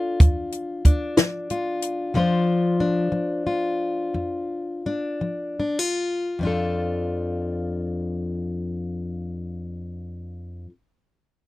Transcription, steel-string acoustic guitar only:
Already playing: D4 F4 A4
0.21 F2
0.86 D4
1.17 F3
1.51 F4
2.14 F2 F3 D4 F4 C5
2.80 D4
3.12 F3
3.47 F4
4.14 F2
4.86 D4
5.21 F3
5.60 D4
5.79 F4
6.39 F2 F3 D4
6.45 F4 A4

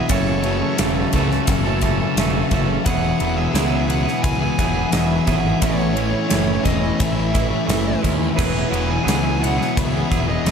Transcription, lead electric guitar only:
0.11 C#5
2.85 F#5
3.37 E5
3.90 F#5
4.23 G#5
4.93 E5
5.63 C#5
6.65 D#5
7.01 E5
8.37 B4
8.90 G#5
9.43 F#5
9.78 E5
10.29 D#5

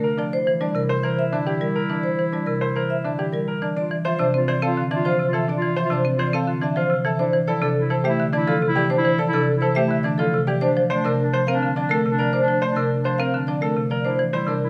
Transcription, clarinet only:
Already playing: D4
0.33 E4
3.76 F4
4.07 F4
4.37 F4
4.66 F4
4.96 F4
5.26 F4
5.57 F4
5.85 F4
6.15 F4
6.45 F4
6.75 F4
7.20 E4
7.49 E4
7.78 E4
8.09 E4
8.38 E4
8.68 E4
8.98 E4
9.29 E4
9.58 E4
9.88 E4
10.17 E4
10.62 D4
10.92 D4
11.22 D4
11.52 D4
11.81 D4
12.11 D4
12.42 D4
12.71 D4
13.02 D4
13.32 D4
13.61 D4
14.05 E4
14.35 E4
14.65 E4

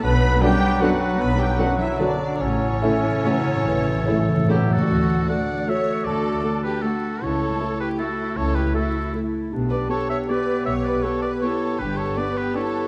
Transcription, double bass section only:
0.03 B1
1.20 B1
2.41 A1
3.67 A1
4.90 D2
6.05 D2
7.22 C#2
8.37 C#2
9.53 B1
10.66 B1
11.80 G1

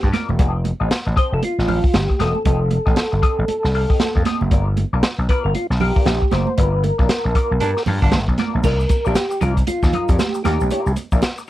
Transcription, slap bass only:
0.03 G2
0.29 E1
0.39 F1
0.81 A1
1.07 A1
1.32 F1
1.43 muted slap bass stroke
1.58 A1
1.94 G1
2.20 E1
2.46 F1
2.87 A1
3.13 G1
3.39 A1
3.49 muted slap bass stroke
3.64 C2
4.16 F2
4.41 F#1
4.51 G1
4.93 B1
5.18 B1
5.45 G1
5.55 muted slap bass stroke
5.70 B1
6.06 A#1
6.32 F#1
6.58 G1
6.99 B1
7.25 A#1
7.51 B1
7.62 G2
7.87 G2
8.03 G1
8.14 G1
8.28 B1
8.55 A#1
8.64 C2
9.06 A#1
9.42 C2
9.68 muted slap bass stroke
9.83 D#2
10.09 F2
10.46 D#2
10.61 B1
10.86 C2
11.12 A#1

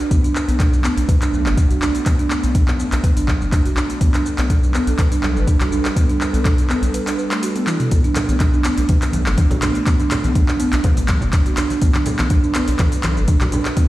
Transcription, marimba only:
0.11 B3
0.24 D4
0.48 B3
0.59 D4
0.84 B3
0.97 D4
1.08 B4
1.21 D4
1.33 F#3
1.57 D4
1.70 F#4
1.81 D4
2.06 B3
2.19 D4
2.43 B3
2.55 D4
2.79 B3
2.92 D4
3.04 B4
3.17 D4
3.28 F#3
3.52 D4
3.65 F#4
3.76 D4
4.01 B3
4.14 D4
4.38 B3
4.50 D4
4.74 B3
4.87 D4
4.99 B4
5.12 D4
5.23 F#3
5.47 D4
5.60 F#4
5.72 D4
5.96 B3
6.09 D4
6.34 B3
6.69 B3
6.82 D4
6.94 B4
7.06 D4
7.18 B4
7.31 A3
7.42 F#4
7.56 B3
7.67 E4
7.91 B3
8.04 D4
8.29 B3
8.53 D4
8.65 B3
8.78 D4
8.89 B4
9.14 F#3
9.38 D4
9.51 F#4
9.62 D4
9.87 B3
10.00 D4
10.24 B3
10.35 D4
10.49 D4
10.60 B3
10.73 D4
10.84 B4
11.09 F#3
11.33 D4
11.46 F#4
11.57 D4
11.82 B3
11.95 D4
12.19 B3
12.30 D4
12.43 D4
12.55 B3
12.68 D4
12.79 B4
13.04 F#3
13.28 D4
13.41 F#4
13.52 D4
13.77 B3

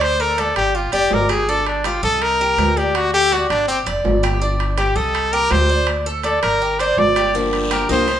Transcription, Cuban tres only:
Already playing: D5
0.20 A4
0.38 D5
0.75 G4
0.93 D5
1.29 G4
1.49 D4
1.85 G4
2.03 D#5
2.41 G4
2.77 D5
3.14 A4
3.32 D5
3.68 G4
3.86 D5
4.23 G4
4.42 D4
4.78 G4
4.96 D#5
5.33 G4
5.69 D5
6.06 A4
6.24 D5
6.62 G4
6.80 D5
7.17 G4
7.35 D4
7.71 G4
7.89 D#5

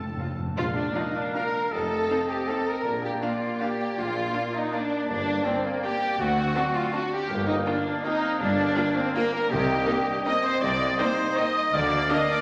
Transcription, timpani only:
0.01 F2
0.09 F2
0.17 F2
0.24 F2
0.32 F2
0.39 F2
0.46 F2
0.56 A#2

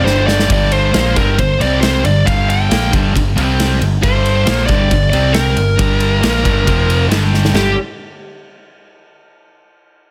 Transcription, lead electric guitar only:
0.05 C5
0.27 D5
0.52 D5
0.73 C5
1.16 A#4
1.40 C5
1.62 D5
1.81 C5
2.05 D5
2.26 F5
2.50 G5
4.04 C5
4.66 D5
5.10 D5
5.33 A#4
7.56 G4

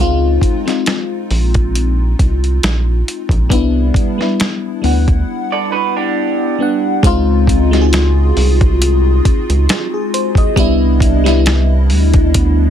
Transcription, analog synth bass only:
0.00 C#2
1.30 A#1
2.20 C2
2.63 A#1
3.30 A#1
3.51 C2
4.84 D2
7.04 C#2
8.37 C2
9.26 C#2
9.49 C#2
10.57 C2
11.90 D2

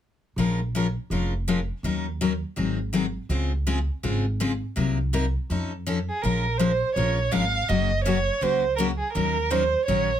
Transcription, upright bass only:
0.36 A#1
1.10 F1
1.83 D#2
2.57 G#1
3.29 C#2
4.03 G#1
4.77 C2
5.50 F2
6.23 A#1
6.96 A#1
7.32 G#1
7.69 F#1
8.41 C#2
9.15 D#2
9.88 A#1

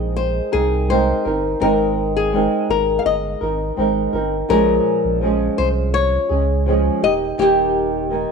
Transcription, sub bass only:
Already playing: A#1
0.53 C2
1.26 G1
1.61 G#1
2.69 G#1
3.05 G1
3.42 G#1
3.78 G#1
4.14 G1
4.50 A#1
5.05 A#1
5.58 C2
6.30 C#2
7.03 D#1
7.39 D#1

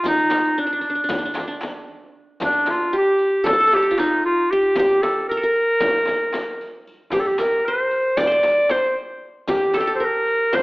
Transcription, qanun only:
Already playing: F4 G4
0.06 D#4
0.31 D#4
0.58 D4
0.67 D4
0.73 D4
0.81 D4
0.90 D4
0.95 D4
1.04 D4
1.11 D4
1.18 D4
1.25 D4
1.34 D4
1.40 D4
1.48 D4
2.42 D4
2.93 G4
3.44 A4
3.53 A4
3.60 A4
3.67 A4
3.76 A4
3.83 A4
3.91 F4
3.99 D#4
4.53 G4
4.79 G4
5.31 A#4
5.37 A4
5.43 A#4
7.13 G4
7.40 A#4
7.68 C5
8.21 D5
8.27 C5
8.32 D5
8.71 C5
9.48 G4
9.74 A4
9.81 G4
9.87 A4
10.00 A#4
10.53 C5

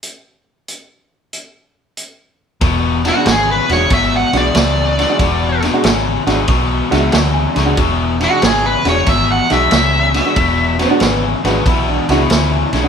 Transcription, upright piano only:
3.05 D4 F#4
3.16 G#3 D4 F#4
3.70 G#3 D4 F#4
4.34 G#3 D4 F#4
4.99 D4 F#4
5.09 G#3 D4 F#4
5.63 D4 F#4
5.73 G#3 D4 F#4
6.27 G#3 D4 F#4
6.91 G#3 D4 F#4 E5
7.12 F#5
7.34 G#5
7.54 D4 G#4 B5
7.65 G#3 D4 F#4
8.20 D4 F#4
8.30 G#3 D4 F#4
8.85 G#3 D4 F#4
9.50 G#3 D4 F#4
10.14 D4 F#4
10.26 G#3 D4 F#4
10.79 D4 F#4
10.91 G#3 D4 F#4
11.45 G#3 D4 F#4
12.10 G#3 D4 F#4
12.73 D4 G#4
12.83 G#3 D4 F#4

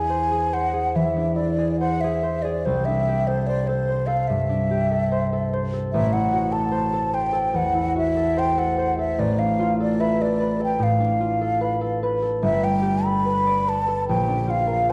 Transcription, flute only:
Already playing: G#5
0.54 F#5
0.96 E5
1.36 D5
1.80 F#5
2.01 E5
2.42 D5
2.65 C5
2.85 E5
3.27 C5
3.47 D5
3.67 C5
4.07 F5
4.27 E5
5.92 E5
6.13 F#5
6.52 A5
7.14 G5
7.56 F#5
7.98 E5
8.39 G5
8.59 F#5
8.99 E5
9.19 D5
9.39 F5
9.81 D5
10.00 E5
10.22 D5
10.64 G5
10.83 F5
12.43 E5
12.64 G5
13.05 B5
13.69 A5
14.08 G5
14.50 F5

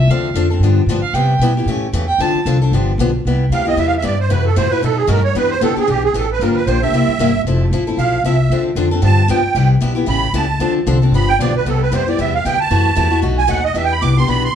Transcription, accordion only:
3.52 F5
3.68 D#5
3.79 E5
3.87 F5
3.97 E5
4.04 D5
4.20 C5
4.30 B4
4.46 A4
4.57 C5
4.70 B4
4.84 A4
4.97 G#4
5.08 A#4
5.24 C#5
5.36 B4
5.50 C5
5.63 A4
5.79 G#4
5.90 G4
6.04 G#4
6.17 A4
6.32 B4
6.42 A#4
6.56 B4
6.67 C5
6.82 E5
7.99 F5
8.25 E5
9.05 A5
9.30 G5
10.09 B5
10.35 A5
11.15 B5
11.28 G5
11.41 D5
11.56 B4
11.68 A4
11.82 B4
11.94 C5
12.09 D5
12.20 E5
12.34 F5
12.46 G5
12.60 A5
13.38 G#5
13.49 F#5
13.65 D#5
13.76 E5
13.85 G5
13.92 B5
14.02 D6
14.17 C6
14.29 B5
14.45 C6

